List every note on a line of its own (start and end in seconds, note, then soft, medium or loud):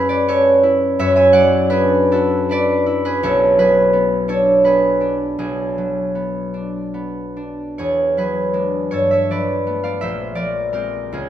0.00 0.98 F#2 medium
0.00 1.32 F#3 soft
0.00 1.02 G#3 medium
0.00 0.27 C#4 medium
0.00 0.62 E4 medium
0.00 2.12 F#4 medium
0.00 1.02 G#4 medium
0.00 0.28 A4 loud
0.00 0.27 C#5 medium
0.09 1.03 B4 medium
0.09 0.40 D5 loud
0.28 3.26 C#4 medium
0.28 2.11 A4 medium
0.28 0.99 C#5 loud
0.63 2.11 E4 medium
0.99 3.26 F#2 medium
0.99 3.22 C#5 loud
0.99 1.15 E5 loud
1.16 3.25 E5 medium
1.16 1.47 G#5 loud
1.33 3.58 F#3 medium
1.33 2.49 D5 loud
1.33 5.23 F#5 loud
1.70 2.49 D4 medium
1.70 3.05 G#4 medium
1.70 2.38 B4 loud
2.12 2.85 E4 medium
2.12 6.03 F#4 medium
2.12 3.24 A4 medium
2.49 4.27 D4 medium
2.49 3.04 B4 medium
2.49 6.42 D5 loud
2.86 3.25 E4 medium
3.05 3.58 G#4 medium
3.05 3.35 B4 loud
3.23 5.38 B1 medium
3.23 4.29 A4 medium
3.23 3.83 C#5 loud
3.59 5.77 F#3 medium
3.59 4.65 G#4 medium
3.59 4.63 B4 loud
3.93 4.63 B3 medium
4.28 5.00 D4 medium
4.28 7.82 A4 medium
4.28 4.91 C#5 loud
4.64 6.14 B3 soft
4.64 5.38 G#4 medium
4.64 8.17 B4 medium
5.01 5.39 D4 medium
5.39 7.82 B1 medium
5.39 6.53 D4 medium
5.39 7.78 G#4 medium
5.78 8.16 F#3 medium
6.15 6.93 B3 soft
6.54 7.35 D4 soft
6.94 9.65 B3 soft
7.37 8.53 D4 soft
7.78 8.94 E2 medium
7.78 8.18 G#4 medium
7.78 8.43 C#5 medium
8.17 8.94 F#3 medium
8.17 8.95 G#4 medium
8.17 9.30 B4 medium
8.53 8.94 G#3 soft
8.53 11.14 D4 soft
8.91 10.04 G2 medium
8.91 10.05 A4 medium
8.91 9.12 C#5 medium
9.11 10.05 C#5 medium
9.11 9.41 E5 medium
9.30 10.34 F3 soft
9.30 10.05 B4 medium
9.30 9.83 D5 medium
9.67 10.05 A3 soft
9.67 10.04 B3 soft
9.84 10.34 D5 medium
9.84 10.13 F5 medium
10.01 11.15 A#1 medium
10.01 11.16 C5 medium
10.01 10.62 E5 medium
10.35 11.29 F3 soft
10.35 10.71 A#4 medium
10.35 11.14 D5 medium
10.73 11.29 G#3 soft
10.73 11.15 C4 medium
10.73 11.15 G4 medium
10.73 11.14 A#4 medium
11.12 11.29 C#2 medium
11.12 11.29 F4 medium
11.12 11.29 G#4 medium